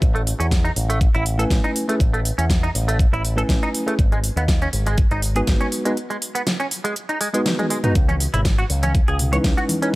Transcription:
0.02 A1, kick, closed hi-hat
0.15 A3, closed hi-hat
0.27 open hi-hat
0.40 E2 C#4, closed hi-hat
0.51 kick, snare, closed hi-hat
0.65 D#4, closed hi-hat
0.76 A1, open hi-hat
0.90 A3, closed hi-hat
1.01 kick, closed hi-hat
1.15 A1 E4, closed hi-hat
1.26 open hi-hat
1.38 A3 C#4 E4 A4 B4 G#5, closed hi-hat
1.50 A1, kick, snare, closed hi-hat
1.64 D#4, closed hi-hat
1.76 open hi-hat
1.88 A3 C#4 E4 G#4 B4, closed hi-hat
2.00 A1, kick, closed hi-hat
2.13 A3, closed hi-hat
2.25 open hi-hat
2.38 E2 C#4, closed hi-hat
2.50 kick, snare, closed hi-hat
2.63 D#4, closed hi-hat
2.75 A1, open hi-hat
2.88 A3, closed hi-hat
2.99 kick, closed hi-hat
3.12 A1 E4, closed hi-hat
3.25 open hi-hat
3.36 A3 C#4 E4 A4 B4 G#5, closed hi-hat
3.49 A1, kick, snare, closed hi-hat
3.63 D#4, closed hi-hat
3.75 open hi-hat
3.86 A3 C#4 E4 G#4 B4, closed hi-hat
3.99 G#1, kick, closed hi-hat
4.12 G#3, closed hi-hat
4.24 open hi-hat
4.36 D#2 B3, closed hi-hat
4.48 kick, snare, closed hi-hat
4.62 C#4, closed hi-hat
4.73 G#1, open hi-hat
4.86 G#3, closed hi-hat
4.98 kick, closed hi-hat
5.11 G#1 D#4, closed hi-hat
5.22 open hi-hat
5.35 G#3 B3 D#4 F#4 G#4 B4, closed hi-hat
5.47 G#1, kick, snare, closed hi-hat
5.61 C#4, closed hi-hat
5.72 open hi-hat
5.85 G#3 B3 D#4 F#4 B4, closed hi-hat
5.97 closed hi-hat
6.10 G#3, closed hi-hat
6.22 open hi-hat
6.35 B3, closed hi-hat
6.47 snare, closed hi-hat
6.60 C#4, closed hi-hat
6.71 open hi-hat
6.84 G#3, closed hi-hat
6.96 closed hi-hat
7.09 D#4, closed hi-hat
7.21 G#3, open hi-hat
7.34 G#3 B3 D#4 F#4 B4, closed hi-hat
7.46 snare, closed hi-hat, high tom
7.59 G#3, closed hi-hat, high tom
7.70 G#3, open hi-hat
7.83 G#3 B3 D#4 F#4 B4, closed hi-hat, mid tom
7.95 C#2, kick, closed hi-hat
8.09 C#4, closed hi-hat, high conga
8.20 open hi-hat
8.33 G#1 E4, closed hi-hat, low conga
8.45 kick, snare, closed hi-hat, high conga
8.59 F#4, closed hi-hat
8.70 C#2, open hi-hat
8.83 C#4, closed hi-hat, high conga
8.95 kick, closed hi-hat
9.08 C#2 G#4, closed hi-hat
9.19 open hi-hat, low conga
9.32 G#3 C#4 D#4 E4 B4 C#5, closed hi-hat, high conga
9.44 C#2, kick, snare, closed hi-hat
9.57 F#4, closed hi-hat
9.69 open hi-hat, high conga
9.81 G#3 C#4 D#4 E4 B4, closed hi-hat

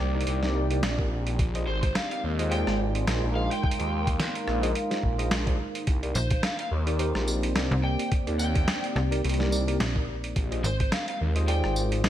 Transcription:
Already playing: A#3 C4 D#4 G4 D5
0.00 C2
0.14 D#4 G4 A#4 D5
0.21 closed hi-hat
0.27 C2, closed hi-hat
0.42 D#4 G4 A#4 D5, snare
0.55 D#4 G4 A#4 D5
0.71 D#4 G4 A#4 D5, closed hi-hat
0.83 A#1, snare, closed hi-hat
0.99 D#4 G4 A#4 D5, kick
1.27 closed hi-hat
1.39 A#1 G#3 D#4 A#4, kick, closed hi-hat
1.55 F4 G#4 C5 D#5, closed hi-hat
1.67 G#1 C5 C6
1.83 C5, kick, closed hi-hat
1.95 F5, snare, closed hi-hat
2.11 F5, closed hi-hat
2.24 D#2
2.39 F4 G#4 C5 D#5 F5, closed hi-hat
2.51 F4 G#4 C5 D5 G5, closed hi-hat
2.67 G#1, cross-stick, snare
2.95 closed hi-hat
3.07 A#1 F4 G#4 C5 D#5, snare, closed hi-hat
3.23 A#1
3.35 F4 G#4 C5 D#5 F5
3.51 G5, closed hi-hat
3.63 G5, kick
3.71 closed hi-hat
3.79 D#2 F4 G#4 C5 D#5, closed hi-hat
4.07 kick, closed hi-hat
4.20 snare, closed hi-hat
4.35 closed hi-hat
4.47 A#1, cross-stick
4.63 F4 G#4 C5 D#5, closed hi-hat
4.75 closed hi-hat
4.91 F4 G#4 C5 D#5, snare, closed hi-hat
5.03 A#1, kick
5.18 F4 G#4 C5 D#5, closed hi-hat
5.31 A#1, snare, closed hi-hat
5.47 F4 G#4 C5 D5, kick, closed hi-hat
5.75 closed hi-hat
5.87 C2 A#3 C4 C5, kick, closed hi-hat
6.03 D#4 G4 A#4 D5, closed hi-hat
6.14 A#1 C5 D5, tambourine
6.31 C5, kick, closed hi-hat
6.43 F5, snare, closed hi-hat
6.59 F5, closed hi-hat
6.71 D#2
6.87 D#4 G4 A#4 D5, closed hi-hat
6.96 D#4 G4 A#4 C5, closed hi-hat
7.15 A#1, cross-stick, snare
7.28 tambourine
7.43 closed hi-hat
7.55 C2 D#4 G4 A#4 D5, snare, closed hi-hat
7.71 C2
7.83 D#4 G4 A#4 D5 G5
7.99 closed hi-hat
8.12 kick, closed hi-hat
8.27 D#2 D#4 G4 A#4 D5, closed hi-hat
8.39 G5, tambourine
8.55 kick, closed hi-hat
8.68 snare, closed hi-hat
8.84 closed hi-hat
8.96 C2, cross-stick
9.11 D#4 G4 A#4 D5, closed hi-hat
9.24 C2, closed hi-hat
9.29 closed hi-hat
9.34 closed hi-hat
9.39 D#4 G4 A#4 D5, snare
9.51 D#4 G4 A#4 D5, tambourine
9.68 D#4 G4 A#4 D5, closed hi-hat
9.80 A#1, snare, closed hi-hat
9.95 D#4 G4 A#4 D5, kick
10.24 closed hi-hat
10.36 A#1 G#3 D#4 A#4, kick, closed hi-hat
10.49 F4 G#4 C5 D#5 F5, closed hi-hat
10.64 G#1 C5, tambourine
10.80 C5, kick, closed hi-hat
10.92 F5, snare, closed hi-hat
11.08 F5, closed hi-hat
11.21 D#2
11.36 F4 G#4 C5 D#5, closed hi-hat
11.48 F4 G#4 C5 D5 G5, closed hi-hat
11.64 G#1, cross-stick
11.76 tambourine
11.92 closed hi-hat
12.04 A#1 F4 G#4 C5 D#5, snare, closed hi-hat

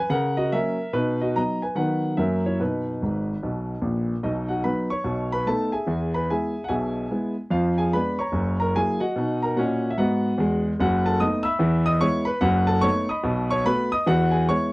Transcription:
Already playing: B4 G#5
0.10 C#3 A#4 F#5
0.37 F#4 D#5
0.52 F#3 A#3 C#4 A#4 E5
0.93 B2 D#4 B4
1.21 F#4 D#5
1.36 F#3 B3 D#4 D#5 A#5
1.62 B4 G#5
1.75 D#3 F#3 B3 D#4 B4 F#5
2.17 F#2 F#3 A#3 C#4 A#4 E5
2.46 E4 C#5
2.60 B2 D#4 B4
3.02 G#1 G#2
3.43 B1 B2
3.81 A#1 A#2
4.23 B1 B2 D#4 D#5
4.49 F#4 F#5
4.64 F#3 B3 D#4 B4 B5
4.90 C#5 C#6
5.04 B1 B2
5.32 B4 B5
5.46 A3 B3 D#4 A4 A5
5.72 G#4 E5 G#5
5.87 E2 E3
6.14 B4 B5
6.30 G#3 B3 E4 G#4 E5 G#5
6.64 F#5
6.68 B1 B2 G#4 E5 G#5
7.11 G#3 B3 E4
7.50 F2 F3 F4 F5
7.78 G#4 G#5
7.93 G#3 B3 D4 B4 B5
8.19 C#5 A#5 C#6
8.32 F#1 F#2
8.60 A#4 A#5
8.75 F#3 A#3 E4 G#4 G#5
9.00 F#4 D#5 F#5
9.16 B2 D#4
9.42 A#4 A#5
9.56 A#2 C#4 F#4 D#5 F#5
9.90 E5
9.98 G#2 B3 F#4 D#5 F#5
10.38 E2 G#3
10.80 F#1 F#2 F#4 F#5
11.06 A4 A5
11.20 A3 B3 D#4 D#5 D#6
11.43 E5 B5 E6
11.59 E2 E3
11.86 D#5 D#6
12.01 G#3 B3 E4 C#5 C#6
12.25 B4 B5
12.41 F#1 F#2 F#4 F#5
12.67 A4 A5
12.81 A3 B3 D#4 C#5 C#6
13.09 D#5 B5 D#6
13.23 B1 B2
13.51 C#5 C#6
13.65 A3 B3 F#4 B4 B5
13.92 D#5 D#6
14.06 E2 E3 F#4 F#5
14.31 G#4 G#5
14.49 G#3 B3 E4 C#5 C#6

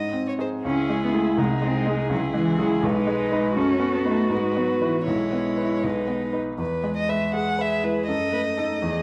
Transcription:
Already playing: G#2 D#5
0.13 C4
0.28 C#5
0.38 D#4 G#4 C5
0.64 C#2 C#4 E4 G#4
0.89 G#3
1.04 B3
1.14 A3 E4 G#4
1.37 C2 G#3 D#4 G#4
1.62 G#3 C4
1.86 G#3 D#4 G#4
2.09 C#2 F#3 E4
2.34 E3 G#3
2.59 F#3 E4 G#4
2.83 B1 G#3 D#4 B4
3.07 G#3
3.32 D#4 B4
3.56 F#2 C#4 F#4 A4
3.80 B3
3.95 B3
4.05 A3 D#4 B4
4.30 G#2 G#3 B4
4.57 F#3 B3
4.82 E3 E4 B4
5.05 B1 G#3 E4 C#5
5.33 B3
5.57 E4 B4
5.83 B1 D#4 B4
6.08 B3
6.33 D#4 B4
6.58 E2 B4
6.84 G#3
6.97 D#5
7.09 G#3 B4 E5
7.34 G#4 F#5
7.59 B4 E5
7.83 G#3 E4 B4
8.08 F#2 A4 D#5
8.33 A3 B4
8.57 A3 D#4 A4
8.81 E2 G#4

